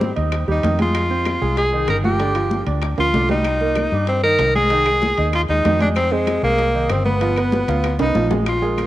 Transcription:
Already playing: G#2 G3 C4 G4
0.01 high bongo, high conga
0.16 D#2 D#4 D#5, high conga, high timbale
0.32 high bongo, high conga, high timbale, claves
0.48 D#2 G3 D#4 G4, high bongo, high conga
0.63 F2 D#3 D#4, high bongo, low bongo, high conga, high timbale
0.79 G#3 F4 G#4, high bongo, high conga, high timbale
0.95 high bongo, high conga, high timbale, claves
1.10 C4 C5, high bongo, high conga
1.26 high bongo, high conga, high timbale, claves
1.42 C2 G#3 G#4, high bongo, high conga
1.57 G#4, high bongo, high conga, high timbale
1.73 D#3 D#4, high conga
1.88 G1 A#4, high bongo, low bongo, high conga, high timbale, claves
2.04 F3 F4 G4, high bongo, high conga
2.20 D3 D4, high bongo, high conga, high timbale
2.35 F3 F4, high bongo, high conga, high timbale, claves
2.51 high bongo, high conga
2.67 D2 D4 D5, high conga, high timbale
2.82 high bongo, high conga, high timbale, claves
2.98 D2 F3 F4, high bongo, high conga, high timbale
3.14 C2 D3 D4, high bongo, low bongo, high conga
3.29 G3 D#4 G4, high bongo, high conga, low timbale
3.45 high bongo, high conga, high timbale, claves
3.61 A#3 A#4, high bongo, high conga
3.76 high bongo, high conga, high timbale, claves
3.92 G2 G3 G4, high bongo, high conga
4.07 C4, high bongo, high conga, high timbale
4.23 D#3 D#4 A#4, high conga
4.39 C2, high bongo, low bongo, high conga, high timbale, low timbale, claves
4.55 G#3 G#4, high bongo, high conga
4.70 D#3 D#4, high bongo, high timbale
4.86 G#3 G#4, high bongo, high conga, high timbale, claves
5.02 high bongo, high conga
5.17 D#2 D#4 D#5, high conga, high timbale
5.33 F4, high bongo, high conga, high timbale, claves
5.49 D#2 G#3 D#4 G#4, high bongo, high conga
5.65 F2 D#3 D#4, high bongo, low bongo, high conga, high timbale, low timbale
5.80 G#3 D4 G#4, high bongo, high conga, high timbale
5.96 C4, high bongo, high conga, high timbale, claves
6.12 G#3 C4 C5, high bongo, high conga
6.27 high bongo, high conga, high timbale, claves
6.43 C2 G#3 A#3 G#4, high bongo, high conga
6.58 high bongo, high conga, high timbale
6.74 D#3 D#4, high conga
6.90 G1 C4, high bongo, low bongo, high conga, high timbale, claves
7.05 B3 B4, high bongo, high conga
7.21 F3 F4, high bongo, high conga, high timbale
7.36 B3 B4, high bongo, high conga, high timbale, claves
7.52 high bongo, high conga
7.68 D2 F4 F5, high bongo, high conga, high timbale
7.83 high bongo, high conga, high timbale, claves
7.99 C2 B3 D#4 B4, low bongo, high conga, high timbale
8.15 A#1 F3 F4, low bongo, high conga
8.30 G#3 G#4, low bongo, high conga, low timbale
8.46 F4, high bongo, high timbale, claves
8.62 G#3 G#4 A#4, high bongo, high conga
8.78 high bongo, high conga, high timbale, claves

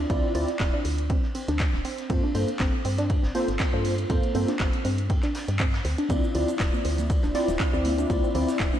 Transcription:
0.10 D2 C4 E4 F4 D5, kick, closed hi-hat, ride
0.35 D2 C4 E4 F4 D5, open hi-hat, ride
0.48 snare, closed hi-hat
0.60 D1 C4, kick, snare, clap, closed hi-hat, ride
0.73 D4
0.85 D2, open hi-hat, ride
0.98 closed hi-hat
1.09 C4, kick, closed hi-hat, ride
1.23 snare
1.35 C4, open hi-hat, ride
1.48 D2 D4, snare, closed hi-hat
1.59 kick, snare, clap, closed hi-hat, ride
1.73 D1, snare
1.85 C4, open hi-hat, ride
1.98 snare, closed hi-hat
2.10 G2 A#3 C4 F4 A4 C5, kick, closed hi-hat, ride
2.23 D4
2.34 G2 A#3 F4 A4 C5, open hi-hat, ride
2.48 closed hi-hat
2.59 G1 C4, kick, snare, clap, closed hi-hat, ride
2.84 G2 C4, open hi-hat, ride
2.98 D4, snare, closed hi-hat
3.10 kick, closed hi-hat, ride
3.23 G1, snare
3.34 A#3 C4 F4 A4 C5, snare, open hi-hat, ride
3.48 G1, snare, closed hi-hat
3.60 C4, kick, snare, clap, closed hi-hat, ride
3.73 G2 A#3 D4 F4 A4 C5
3.85 open hi-hat, ride
3.98 closed hi-hat
4.10 G2 A#3 C4 F4 A4 C5, kick, closed hi-hat, ride
4.23 closed hi-hat
4.35 G2 A#3 C4 F4 A4 C5, open hi-hat, ride
4.48 D4, snare, closed hi-hat
4.60 G1, kick, snare, clap, closed hi-hat, ride
4.73 closed hi-hat
4.85 G2 C4, open hi-hat, ride
4.98 closed hi-hat
5.10 C4, kick, closed hi-hat, ride
5.23 D4, snare, clap, closed hi-hat
5.35 snare, open hi-hat, ride
5.48 G2, snare, closed hi-hat
5.60 C4, kick, clap, closed hi-hat
5.74 snare, ride
5.85 D2 C4, snare, open hi-hat
5.98 D4, closed hi-hat, ride
6.09 D2 C4 E4 F4 D5, kick, closed hi-hat, ride, high conga, shaker
6.24 shaker
6.35 D2 C4 E4 F4 D5, open hi-hat, ride, low conga
6.48 D4, closed hi-hat, shaker
6.60 D1, kick, snare, clap, closed hi-hat, ride, shaker
6.73 C4, high conga, shaker
6.85 D2 C4, open hi-hat, ride
6.98 snare, closed hi-hat, high conga, low conga, shaker
7.10 kick, closed hi-hat, ride, shaker
7.23 D1 D4, snare, shaker
7.35 C4 E4 F4 D5, snare, open hi-hat, ride
7.48 D1 C4, snare, closed hi-hat, shaker
7.60 C4, kick, snare, clap, closed hi-hat, ride, shaker
7.73 D2 C4 E4 F4 D5, shaker
7.85 open hi-hat, ride, high conga
7.98 D4, closed hi-hat, shaker
8.10 D2 C4 E4 F4 D5, kick, closed hi-hat, ride, high conga, shaker
8.23 C4, shaker
8.34 D2 C4 E4 F4 D5, open hi-hat, ride, low conga
8.48 snare, closed hi-hat, shaker
8.60 D1, kick, snare, clap, closed hi-hat, shaker
8.73 D4, high conga, shaker

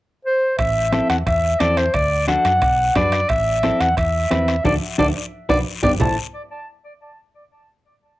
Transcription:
0.25 C5
0.58 A1 E5, bombo low, bombo rim, high timbale, long guiro
0.92 C4 E4 A4, bombo rim, high conga, high timbale, short guiro
1.10 E2 F#5, bombo rim, high timbale, short guiro
1.26 E2 E5, bombo low, bombo rim, high timbale, long guiro
1.60 E2 C4 E4 A4 D5, bombo rim, high conga, high timbale, short guiro
1.77 C5, bombo rim, high timbale, short guiro
1.94 D2 D5, bombo low, bombo rim, high timbale, long guiro
2.28 D4 F#4 A4 F#5, bombo rim, high conga, high timbale, short guiro
2.45 F#2, bombo rim, high timbale, short guiro
2.62 B1, bombo low, bombo rim, high timbale, long guiro
2.95 F#2 D4 F#4 B4 D5, bombo low, bombo rim, high conga, high timbale, low timbale, short guiro
3.12 bombo rim, high timbale, short guiro
3.29 A1 E5, bombo low, bombo rim, high timbale, long guiro
3.63 C4 E4 A4, bombo rim, high conga, high timbale, short guiro
3.80 E2 F#5, bombo rim, high timbale, short guiro
3.97 E2 E5, bombo low, bombo rim, high timbale, long guiro
4.31 E2 C4 E4 B4, bombo rim, high conga, high timbale, low timbale, short guiro
4.48 bombo rim, high timbale, short guiro
4.64 D2 D4 F#4 A4 D5, bombo low, high conga, high timbale, long guiro
4.98 D2 D4 F#4 A4 D5, bombo low, high conga, high timbale
5.49 B1 D4 F#4 B4 D5, bombo low, high conga, high timbale, long guiro
5.83 G1 B3 D4 G4 D5, bombo low, high conga, high timbale
6.00 A1 E4 A4 C5 A5, bombo low, low conga, low timbale, long guiro

